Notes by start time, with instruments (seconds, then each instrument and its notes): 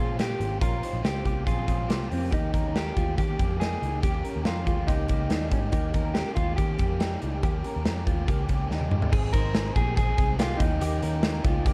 Already playing: picked electric bass A#2, overdriven electric guitar F4, clean electric guitar F4 G#4
0.00 overdriven electric guitar C4 C#4
0.18 overdriven electric guitar A#2 F3 C4 C#4 F4, clean electric guitar A#3 G4, snare, closed hi-hat
0.40 picked electric bass G#1, overdriven electric guitar C4 C#4 F4, closed hi-hat
0.60 picked electric bass A#1, overdriven electric guitar A#2 F3 C4 C#4 F4, clean electric guitar F4 A#4, kick, closed hi-hat
0.82 overdriven electric guitar C4 C#4 F4, clean electric guitar D#4 C5, closed hi-hat
0.93 picked electric bass A#1
1.03 picked electric bass C#2, overdriven electric guitar A#2 F3 C4 C#4 F4, clean electric guitar G4, snare, closed hi-hat
1.25 picked electric bass C2, clean electric guitar A#3 G4, overdriven electric guitar C4 C#4 F4, kick, closed hi-hat
1.46 picked electric bass A#1, overdriven electric guitar F3 C4 C#4 F4, clean electric guitar F4 G#4, kick, closed hi-hat
1.67 picked electric bass A#1, overdriven electric guitar C4 C#4 F4, clean electric guitar G#4, kick, closed hi-hat
1.88 picked electric bass C2, overdriven electric guitar A#2 F3 C4 C#4 F4, clean electric guitar A#3 G4, snare, closed hi-hat
2.09 picked electric bass F2, overdriven electric guitar C4 C#4 F4, open hi-hat
2.13 clean electric guitar C4
2.31 picked electric bass D#2, overdriven electric guitar D#3 A#3 C#4 G4, clean electric guitar D#4, kick, closed hi-hat
2.52 picked electric bass D#2, overdriven electric guitar A#3 C#4 G4, clean electric guitar A#4, kick, closed hi-hat
2.72 overdriven electric guitar D#3 A#3 C#4 G4, clean electric guitar G4, snare, closed hi-hat
2.94 picked electric bass D#2, clean electric guitar G#3 F4, overdriven electric guitar A#3 C#4 G4, kick, closed hi-hat
3.16 overdriven electric guitar D#3 A#3 C#4 G4, picked electric bass D#3, clean electric guitar G4, kick, closed hi-hat
3.37 picked electric bass F2, overdriven electric guitar A#3 C#4 G4, kick, closed hi-hat
3.58 overdriven electric guitar D#3 A#3 C#4 G4, clean electric guitar D#4 G#4, snare, closed hi-hat
3.80 picked electric bass C#2, overdriven electric guitar A#3 C#4 G4, closed hi-hat
4.01 picked electric bass D#2, overdriven electric guitar D#3 A#3 C#4 G4, clean electric guitar G4, kick, closed hi-hat
4.22 overdriven electric guitar A#3 C#4 G4, clean electric guitar A#4, closed hi-hat
4.36 picked electric bass D#2
4.44 picked electric bass F2, overdriven electric guitar D#3 A#3 C#4 G4, clean electric guitar F4, snare, closed hi-hat
4.65 picked electric bass D#2, clean electric guitar G#3 F4, overdriven electric guitar A#3 C#4 G4, kick, closed hi-hat
4.86 picked electric bass C#2, overdriven electric guitar D#3 A#3 C#4 G4, clean electric guitar D#4, kick, closed hi-hat
5.08 picked electric bass C#2, overdriven electric guitar A#3 C#4 G4, kick, closed hi-hat
5.28 picked electric bass D#2, overdriven electric guitar D#3 A#3 C#4 G4, clean electric guitar G3 D#4, snare, closed hi-hat
5.50 picked electric bass G#2, overdriven electric guitar A#3 C#4 G4, clean electric guitar C#4, kick, closed hi-hat
5.70 picked electric bass D#2, overdriven electric guitar D#3 A#3 C#4 G4, clean electric guitar D#4, kick, closed hi-hat
5.92 picked electric bass D#2, overdriven electric guitar A#3 C#4 G4, clean electric guitar A#4, kick, closed hi-hat
6.14 overdriven electric guitar D#3 A#3 C#4 G4, clean electric guitar G4, snare, closed hi-hat
6.35 picked electric bass D#2, clean electric guitar G#3 F4, overdriven electric guitar A#3 C#4 G4, kick, closed hi-hat
6.56 overdriven electric guitar D#3 A#3 C#4 G4, picked electric bass D#3, clean electric guitar G4, kick, closed hi-hat
6.77 picked electric bass F2, overdriven electric guitar A#3 C#4 G4, kick, closed hi-hat
6.99 overdriven electric guitar D#3 A#3 C#4 G4, clean electric guitar G3 D#4, snare, closed hi-hat
7.21 picked electric bass C#2, overdriven electric guitar A#3 C#4 G4, closed hi-hat
7.41 picked electric bass D#2, overdriven electric guitar D#3 A#3 C#4 G4, kick, closed hi-hat
7.63 overdriven electric guitar A#3 C#4 G4, clean electric guitar A#4, closed hi-hat
7.76 picked electric bass D#2
7.84 picked electric bass F2, overdriven electric guitar D#3 A#3 C#4 G4, snare, closed hi-hat
8.05 picked electric bass D#2, clean electric guitar G#3 F4, overdriven electric guitar A#3 C#4 G4, kick, closed hi-hat
8.25 picked electric bass C#2, overdriven electric guitar D#3 A#3 C#4 G4, kick, closed hi-hat
8.46 picked electric bass C#2, overdriven electric guitar A#3 C#4 G4, kick, closed hi-hat
8.67 picked electric bass D#2, overdriven electric guitar D#3 A#3 C#4 G4, clean electric guitar G3 D#4, snare
8.81 high tom
8.89 picked electric bass G#2, overdriven electric guitar A#3 C#4 G4, mid tom
9.02 floor tom
9.10 picked electric bass G#1, overdriven electric guitar G#2 D#3 G#3 C4 D#4 G#4, kick, crash
9.33 picked electric bass G#1, overdriven electric guitar G#3 C4 D#4 G#4, clean electric guitar A#4 C5, kick, closed hi-hat
9.53 overdriven electric guitar G#3 C4 D#4 G#4, snare, closed hi-hat
9.73 picked electric bass A#1, overdriven electric guitar G#3 C4 D#4 G#4, clean electric guitar A#3 G4 G#4, kick, closed hi-hat
9.95 overdriven electric guitar G#2 D#3 G#3 C4 D#4 G#4, clean electric guitar G#4, kick, closed hi-hat
10.16 picked electric bass C2, overdriven electric guitar G#3 C4 D#4 G#4, kick, closed hi-hat
10.38 overdriven electric guitar G#3 C4 D#4 G#4, clean electric guitar A#3 F4 G4, snare, closed hi-hat
10.57 picked electric bass D#2, overdriven electric guitar A#3 C#4 G4, clean electric guitar D#4, kick, closed hi-hat
10.80 picked electric bass D#2, overdriven electric guitar D#3 A#3 C#4 G4, closed hi-hat
11.02 picked electric bass D#2, overdriven electric guitar A#3 C#4 G4, clean electric guitar A#4, closed hi-hat
11.22 overdriven electric guitar D#3 A#3 C#4 G4, snare, closed hi-hat
11.43 picked electric bass C#2, clean electric guitar G#3 F4, overdriven electric guitar A#3 C#4 G4, kick, closed hi-hat
11.65 overdriven electric guitar D#3 A#3 C#4 G4, kick, closed hi-hat